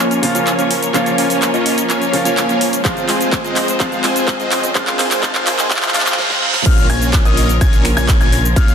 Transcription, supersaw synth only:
0.00 A#3 C#4 F4 C#5 G#5
0.35 A#3 C#4 F4 C#5 G#5
0.59 A#3 C#4 F4 C#5 G#5
0.94 A#3 C#4 F4 C#5 F5
1.18 A#3 C#4 F4 C#5 G#5
1.54 A#3 C#4 F4 C#5 D#5
1.90 A#3 C#4 F4 C#5 G#5
2.25 A#3 C#4 F4 C#5 G#5
2.49 A#3 C#4 F4 C#5 G#5
2.85 G#3 C4 F4 C5 F5
3.09 G#3 C4 F4 C5 G#5
3.44 G#3 C4 F4 C5 D#5
3.80 G#3 C4 F4 C5 F5
4.04 G#3 C4 F4 C5 G#5
4.40 G#3 C4 F4 C5 D#5
4.75 G#3 C4 F4 C5 F5
4.99 G#3 C4 F4 C5 G#5
5.23 G#3 C4 F4 C5 F5
5.47 G#3 C4 F4 C5 G#5
5.71 G#3 C4 F4 C5 F5
5.94 G#3 C4 F4 C5 F5
6.18 G#3 C4 F4 C5 F5
6.42 G#3 C4 F4 C5 F5
6.66 A#3 C#4 F4 C#5 F5
6.90 A#3 C#4 F4 C#5 G#5
7.25 A#3 C#4 F4 C#5 D#5
7.61 A#3 C#4 F4 C#5 G#5
7.97 A#3 C#4 F4 C#5 G#5
8.21 A#3 C#4 F4 C#5 G#5
8.56 A#3 C#4 F4 C#5 F5

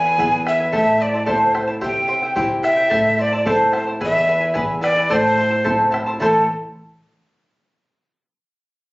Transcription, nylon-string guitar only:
Already playing: E2
0.18 B3 E4 G#4
0.74 A2
1.29 C4 E4 A4
1.84 C3
2.37 C4 E4 G4
2.92 A2
3.46 C4 E4 A4
4.01 E2
4.56 B3 E4 G#4
5.12 A2
5.66 C4 E4 A4
6.20 A2 E3 A3 C4 E4

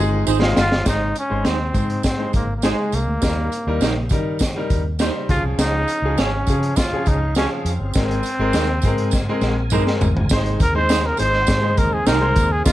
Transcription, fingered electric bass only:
0.00 G1
0.28 G#1
0.58 G1
0.86 G#1
1.31 G#1
1.45 D#2
1.75 G#2
2.34 G#1
2.93 C2
3.08 D2
3.22 D#2
3.67 D#2
3.81 A#1
4.11 D#3
4.71 D#2
5.29 C#2
5.43 C2
5.58 C#2
6.02 C#2
6.17 G#1
6.47 C#3
6.93 muted fingered electric bass stroke
7.07 C#2
7.65 F2
7.79 G1
7.96 G#1
8.39 G#1
8.54 D#2
8.84 G#2
9.41 A#1
10.01 G#1
10.15 G1
10.31 G#1
10.60 D#2
11.20 G#1
11.49 G#2
11.78 D#2
12.07 C2
12.36 D#2
12.66 D#2

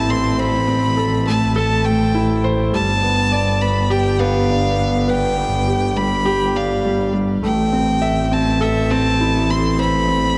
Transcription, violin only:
Already playing: A5
0.09 C6
0.39 B5
1.27 A5
1.56 A5
1.84 G5
2.74 A5
3.61 B5
3.91 G5
4.20 F5
5.09 G5
5.97 B5
6.56 F5
7.44 G5
8.33 A5
8.62 E5
8.91 A5
9.50 C6
9.80 B5

